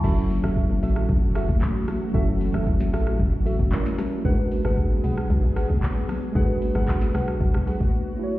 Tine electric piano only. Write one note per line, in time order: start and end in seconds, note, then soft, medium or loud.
0.00 2.09 F#3 medium
0.00 2.10 C#4 medium
0.00 0.17 C#6 medium
0.06 2.11 E4 medium
0.06 2.12 A4 medium
2.11 3.68 F#3 medium
2.11 3.69 C#4 medium
2.16 3.70 E4 medium
2.16 3.71 A4 medium
3.71 4.24 G3 medium
3.71 4.25 C#4 medium
3.71 4.25 E4 medium
3.71 4.26 A#4 medium
4.22 6.30 G#3 medium
4.22 6.31 D4 medium
4.27 6.32 F#4 medium
4.27 4.33 A#4 medium
4.35 6.37 B4 medium
6.33 8.14 G#3 medium
6.33 8.16 D4 medium
6.37 8.17 F#4 medium
6.37 6.44 A4 medium
6.46 8.21 B4 medium
8.17 8.39 A3 medium
8.17 8.39 E4 medium
8.21 8.39 F#4 medium
8.21 8.39 C#5 medium